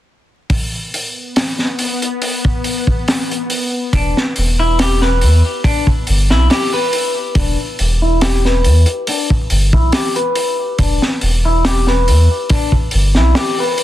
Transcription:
0.50 B3, kick, open hi-hat
0.94 open hi-hat
1.36 snare, open hi-hat
1.59 snare
1.79 open hi-hat
2.02 closed hi-hat
2.22 open hi-hat
2.45 kick
2.64 open hi-hat
2.87 kick
3.08 snare, open hi-hat
3.31 closed hi-hat
3.50 open hi-hat
3.93 E1 D4, kick, open hi-hat
4.17 snare
4.36 E1, open hi-hat
4.59 E4
4.79 G4, snare, open hi-hat
5.02 B4, snare
5.21 E2, open hi-hat
5.64 D4, kick, open hi-hat
5.87 kick
6.07 G1, open hi-hat
6.30 B1 E4, snare
6.50 G4, snare, open hi-hat
6.74 B4
6.93 open hi-hat
7.35 E1 D4, kick, open hi-hat
7.79 E1, open hi-hat
8.02 E4
8.21 G4, snare, open hi-hat
8.45 B4, snare
8.64 E2, open hi-hat
8.86 closed hi-hat
9.07 D4, open hi-hat
9.30 kick
9.50 G1, open hi-hat
9.73 B1 E4, kick
9.92 G4, snare, open hi-hat
10.16 B4, closed hi-hat
10.35 open hi-hat
10.79 E1 D4, kick, open hi-hat
11.02 snare
11.21 E1, open hi-hat
11.45 E4
11.65 G4, snare, open hi-hat
11.87 B4, snare
12.08 E2, open hi-hat
12.50 D4, kick, open hi-hat
12.72 kick
12.91 G1, open hi-hat
13.15 B1 E4, snare
13.35 G4, snare, open hi-hat
13.60 B4
13.78 open hi-hat

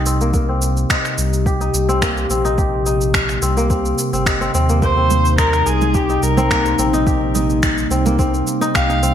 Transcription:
Already playing: C2 C3 G3 A#3 D#4 G4
0.06 C4, shaker
0.21 A#3, shaker
0.34 A#3 G4, kick, shaker
0.49 C4
0.62 shaker
0.77 shaker
0.90 D#4, finger snap, kick, shaker
1.05 finger snap, shaker
1.18 C2, shaker
1.33 shaker
1.46 G4, kick, shaker
1.61 D#4, shaker
1.74 C2, shaker
1.89 C4, shaker
2.02 A#3, finger snap, kick, shaker
2.17 shaker
2.30 A#1 C4, shaker
2.45 D#4, shaker
2.58 G4, kick, shaker
2.86 D#4, shaker
3.01 shaker
3.14 finger snap, kick, shaker
3.29 finger snap, shaker
3.42 C2 C4, shaker
3.57 A#3, shaker
3.70 C4, kick, shaker
3.85 shaker
3.98 shaker
4.13 G1 C4, shaker
4.26 D#4, finger snap, kick, shaker
4.41 C4, shaker
4.54 D#2 C4, shaker
4.69 A#3, shaker
4.82 A#3 D#4 C5, kick, shaker
4.97 C4, high conga
5.10 high conga, low conga, shaker
5.25 shaker
5.38 D#4 A#4, finger snap, kick, shaker
5.53 finger snap, shaker
5.66 C2 G#4, shaker
5.81 muted conga, low conga, shaker
5.94 G4, kick, shaker
6.09 D#4, shaker
6.22 C2 A#4, shaker
6.37 C4, muted conga, low conga, shaker
6.51 A#3, finger snap, kick, shaker
6.66 muted conga, high conga, shaker
6.78 A#1 C4, shaker
6.93 D#4, high conga, shaker
7.07 G4, kick, shaker
7.21 high conga
7.35 D#4, high conga, low conga, shaker
7.50 shaker
7.63 finger snap, kick, shaker
7.78 shaker
7.90 C2 C4, shaker
8.06 A#3, muted conga, low conga, shaker
8.19 C4, kick, high conga, shaker
8.34 shaker
8.47 muted conga, shaker
8.61 D#4, muted conga, shaker
8.74 C2 G4 F5, finger snap, kick, shaker
8.89 D#4, muted conga, shaker
9.03 C4, high conga, shaker

